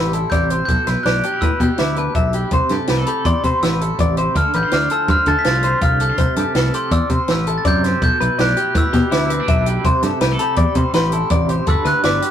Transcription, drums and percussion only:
0.13 closed hi-hat medium
0.32 kick medium
0.32 snare soft
0.32 closed hi-hat medium
0.50 closed hi-hat medium
0.68 kick medium
0.68 closed hi-hat medium
0.87 snare soft
0.87 closed hi-hat medium
1.06 snare medium
1.06 closed hi-hat medium
1.23 closed hi-hat medium
1.42 kick medium
1.42 closed hi-hat medium
1.60 kick medium
1.60 closed hi-hat medium
1.78 snare loud
1.78 closed hi-hat medium
1.96 closed hi-hat soft
2.15 kick medium
2.15 closed hi-hat medium
2.33 closed hi-hat soft
2.51 kick medium
2.51 closed hi-hat medium
2.69 snare soft
2.69 closed hi-hat medium
2.87 snare loud
2.87 closed hi-hat medium
3.06 closed hi-hat medium
3.25 kick medium
3.25 closed hi-hat medium
3.44 kick medium
3.44 closed hi-hat medium
3.63 snare medium
3.63 closed hi-hat medium
3.81 closed hi-hat medium
3.99 kick medium
3.99 closed hi-hat medium
4.17 closed hi-hat medium
4.36 kick medium
4.36 closed hi-hat medium
4.53 closed hi-hat soft
4.71 snare medium
4.71 closed hi-hat medium
4.90 closed hi-hat medium
5.08 kick medium
5.08 closed hi-hat medium
5.26 kick medium
5.26 closed hi-hat soft
5.44 snare loud
5.44 closed hi-hat medium
5.63 closed hi-hat soft
5.81 kick medium
5.81 closed hi-hat medium
6.00 closed hi-hat medium
6.18 kick medium
6.18 closed hi-hat medium
6.36 closed hi-hat medium
6.55 snare medium
6.55 closed hi-hat medium
6.74 closed hi-hat medium
6.91 kick loud
6.91 closed hi-hat medium
7.10 kick medium
7.10 closed hi-hat medium
7.28 snare medium
7.28 closed hi-hat medium
7.47 closed hi-hat medium
7.65 kick medium
7.65 snare soft
7.65 closed hi-hat medium
7.84 snare soft
7.84 closed hi-hat medium
8.02 kick medium
8.02 closed hi-hat medium
8.21 closed hi-hat medium
8.39 snare medium
8.39 closed hi-hat medium
8.57 closed hi-hat medium
8.75 kick loud
8.75 closed hi-hat medium
8.93 kick medium
8.93 snare soft
8.93 closed hi-hat soft
9.12 snare loud
9.12 closed hi-hat medium
9.30 closed hi-hat medium
9.48 kick loud
9.48 closed hi-hat medium
9.66 closed hi-hat medium
9.84 kick medium
9.84 closed hi-hat medium
10.03 snare soft
10.03 closed hi-hat medium
10.21 snare loud
10.21 closed hi-hat medium
10.39 closed hi-hat medium
10.56 kick loud
10.56 closed hi-hat medium
10.75 kick medium
10.75 closed hi-hat medium
10.94 snare loud
10.94 closed hi-hat medium
11.12 closed hi-hat medium
11.30 kick loud
11.30 closed hi-hat medium
11.49 closed hi-hat medium
11.67 kick medium
11.67 closed hi-hat medium
11.85 snare soft
11.85 closed hi-hat soft
12.03 snare medium
12.03 closed hi-hat medium
12.22 closed hi-hat medium

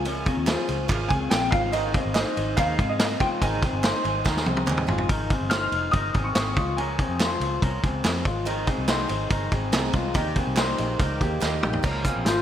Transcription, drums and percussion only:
0.05 ride medium
0.26 kick medium
0.26 ride medium
0.47 snare loud
0.47 clap loud
0.47 ride medium
0.69 ride medium
0.89 kick loud
0.89 clap medium
0.89 ride medium
1.10 kick medium
1.10 ride medium
1.31 snare loud
1.31 clap medium
1.31 ride medium
1.52 kick loud
1.52 ride medium
1.73 ride medium
1.94 kick loud
1.94 ride medium
2.15 snare loud
2.15 clap medium
2.15 ride medium
2.37 ride medium
2.58 kick medium
2.58 clap medium
2.58 ride medium
2.79 kick loud
2.79 ride medium
2.99 snare loud
2.99 clap medium
2.99 ride medium
3.20 kick loud
3.20 ride medium
3.42 kick loud
3.42 ride medium
3.62 kick loud
3.62 ride medium
3.84 snare loud
3.84 clap loud
3.84 ride medium
4.05 ride medium
4.26 kick loud
4.26 snare medium
4.26 clap medium
4.37 snare medium
4.46 high tom medium
4.57 high tom medium
4.67 clap medium
4.67 mid tom medium
4.77 mid tom medium
4.88 floor tom loud
4.98 floor tom medium
5.09 kick loud
5.09 ride medium
5.30 kick loud
5.30 ride medium
5.51 snare loud
5.51 clap medium
5.51 ride medium
5.72 ride medium
5.93 kick loud
5.93 ride medium
6.14 kick loud
6.14 ride medium
6.35 snare loud
6.35 clap medium
6.35 ride medium
6.56 kick loud
6.56 ride medium
6.78 ride medium
6.99 kick loud
6.99 ride medium
7.20 snare loud
7.20 clap medium
7.20 ride medium
7.41 ride medium
7.62 kick medium
7.62 ride medium
7.84 kick medium
7.84 ride medium
8.04 snare loud
8.04 clap medium
8.04 ride medium
8.25 kick loud
8.25 ride medium
8.47 ride medium
8.67 kick medium
8.67 ride medium
8.88 snare loud
8.88 clap medium
8.88 ride medium
9.09 ride medium
9.30 kick medium
9.30 ride medium
9.52 kick medium
9.52 ride medium
9.73 snare loud
9.73 clap medium
9.73 ride medium
9.93 kick loud
9.93 ride medium
10.15 kick loud
10.15 ride medium
10.36 kick medium
10.36 ride medium
10.56 snare loud
10.56 clap medium
10.56 ride medium
10.78 ride medium
10.99 kick medium
10.99 ride medium
11.21 kick medium
11.21 ride medium
11.42 snare medium
11.42 clap loud
11.63 mid tom medium
11.73 floor tom medium
11.84 kick medium
11.84 crash medium
12.04 kick medium
12.04 closed hi-hat medium
12.26 snare loud
12.26 closed hi-hat medium

